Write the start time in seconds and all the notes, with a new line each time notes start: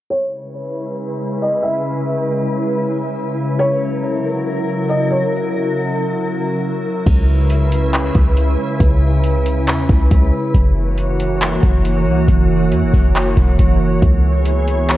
0.11 C#3 G#3 E4 B4 C#5
1.42 D#5
1.62 E5
3.59 F#3 A#4 C#5
4.89 D#5
5.11 C#5
7.06 C#2 C#3 G#3 E4 B4, kick, closed hi-hat, crash
7.50 closed hi-hat
7.72 closed hi-hat
7.93 clap, closed hi-hat
8.15 C#2, kick, closed hi-hat
8.37 closed hi-hat
8.80 C#2, kick, closed hi-hat
9.24 closed hi-hat
9.46 closed hi-hat
9.67 E2, clap, closed hi-hat
9.89 C#2, kick, closed hi-hat
10.11 C#2, kick, closed hi-hat
10.54 F#1 E3 A#3 F#4 C#5, kick, closed hi-hat
10.98 closed hi-hat
11.20 closed hi-hat
11.41 clap, closed hi-hat
11.63 F#1, kick, closed hi-hat
11.85 closed hi-hat
12.07 C#2
12.28 F#1, kick, closed hi-hat
12.72 F#2, closed hi-hat
12.83 F#1
12.93 F#1, kick, open hi-hat
13.15 clap, closed hi-hat
13.37 E1, kick, closed hi-hat
13.59 F#1, kick, closed hi-hat
14.02 C#2 E3 B3 G#4, kick, closed hi-hat
14.46 closed hi-hat
14.68 closed hi-hat
14.89 clap, closed hi-hat